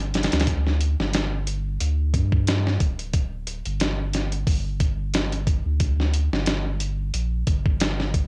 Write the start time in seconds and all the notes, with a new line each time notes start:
Already playing: G1
0.14 snare, closed hi-hat
0.23 snare, closed hi-hat
0.32 D2, snare, closed hi-hat
0.40 snare, closed hi-hat
0.47 kick, closed hi-hat
0.67 snare
0.81 closed hi-hat
0.99 G1, snare
1.13 snare, closed hi-hat
1.47 closed hi-hat
1.80 D2, closed hi-hat
2.14 G2, kick, closed hi-hat
2.32 kick
2.47 snare, closed hi-hat
2.67 snare
2.80 D1, kick, closed hi-hat
2.99 closed hi-hat
3.13 kick, closed hi-hat
3.47 closed hi-hat
3.65 G1, closed hi-hat
3.80 snare, closed hi-hat
4.13 snare, closed hi-hat
4.32 closed hi-hat
4.47 G1, kick, open hi-hat
4.80 kick, closed hi-hat
5.14 snare, closed hi-hat
5.32 closed hi-hat
5.47 kick, closed hi-hat
5.66 D2
5.80 kick, closed hi-hat
6.00 snare
6.14 closed hi-hat
6.32 G1, snare
6.46 snare, closed hi-hat
6.80 closed hi-hat
7.14 A#1, closed hi-hat
7.47 G1, kick, closed hi-hat
7.66 kick
7.80 snare, closed hi-hat
8.00 snare
8.14 kick, closed hi-hat